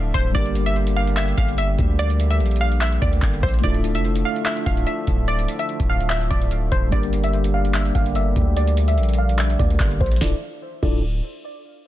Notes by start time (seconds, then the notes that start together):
Already playing: D1 D3 F3 A3 D4 E4 F4 A4 D5 E5
0.14 D1 C5, kick, closed hi-hat
0.32 G1 G3 A#3 D4 G4 D5, kick, closed hi-hat
0.37 G4 A#4
0.46 closed hi-hat
0.55 closed hi-hat
0.66 E5, closed hi-hat
0.76 closed hi-hat
0.87 closed hi-hat
0.96 F5
1.07 closed hi-hat
1.17 E5, clap, closed hi-hat
1.28 closed hi-hat
1.38 G1 F5, kick, closed hi-hat
1.48 closed hi-hat
1.58 E5, closed hi-hat
1.79 D2, kick, closed hi-hat
1.99 D5, closed hi-hat
2.10 closed hi-hat
2.20 closed hi-hat
2.30 E5, closed hi-hat
2.40 A#1, closed hi-hat
2.46 closed hi-hat
2.51 closed hi-hat
2.56 closed hi-hat
2.61 F5
2.72 closed hi-hat
2.81 E5, clap, closed hi-hat
2.92 closed hi-hat
3.02 D2 D5, kick, closed hi-hat
3.13 closed hi-hat
3.22 G1, kick, clap, closed hi-hat
3.33 closed hi-hat
3.43 A#1 C5, kick, closed hi-hat
3.48 closed hi-hat
3.54 closed hi-hat
3.59 A3 D4, closed hi-hat
3.63 D1 D3 F3 A3 E4 F4 A4 D5 E5, kick, closed hi-hat
3.74 closed hi-hat
3.84 closed hi-hat
3.95 F1 E5, closed hi-hat
4.05 closed hi-hat
4.16 closed hi-hat
4.25 F5
4.36 closed hi-hat
4.46 E5, clap, closed hi-hat
4.57 closed hi-hat
4.66 D1 F5, kick, closed hi-hat
4.77 closed hi-hat
4.87 E5, closed hi-hat
5.07 D1, kick, closed hi-hat
5.28 D5, closed hi-hat
5.39 closed hi-hat
5.48 closed hi-hat
5.59 E5, closed hi-hat
5.69 closed hi-hat
5.80 D1, kick, closed hi-hat
5.90 F5
6.00 closed hi-hat
6.10 E5, clap, closed hi-hat
6.21 closed hi-hat
6.31 D1 D5, kick, closed hi-hat
6.42 closed hi-hat
6.51 closed hi-hat
6.72 D1 C5, kick, closed hi-hat
6.89 G1 G3 A#3 D4 G4 D5, kick, closed hi-hat
6.94 G4 A#4
7.03 closed hi-hat
7.13 closed hi-hat
7.24 E5, closed hi-hat
7.33 closed hi-hat
7.44 closed hi-hat
7.54 F5
7.65 closed hi-hat
7.74 E5, clap, closed hi-hat
7.85 closed hi-hat
7.95 G1 F5, kick, closed hi-hat
8.06 closed hi-hat
8.15 E5, closed hi-hat
8.36 D2, kick, closed hi-hat
8.57 D5, closed hi-hat
8.67 closed hi-hat
8.77 closed hi-hat
8.88 E5, closed hi-hat
8.98 A#1, closed hi-hat
9.03 closed hi-hat
9.09 closed hi-hat
9.13 closed hi-hat
9.18 F5
9.29 closed hi-hat
9.39 E5, clap, closed hi-hat
9.50 closed hi-hat
9.59 D2 D5, kick, closed hi-hat
9.70 closed hi-hat
9.80 G1, kick, clap, closed hi-hat
9.91 closed hi-hat
10.01 A#1 C5, kick, closed hi-hat
10.06 closed hi-hat
10.11 closed hi-hat
10.16 closed hi-hat
10.21 D1 D3 F3 A3 D4 E4 F4 A4 D5, kick, snare
10.83 D1 D4 E4 F4 A4 D5, kick, crash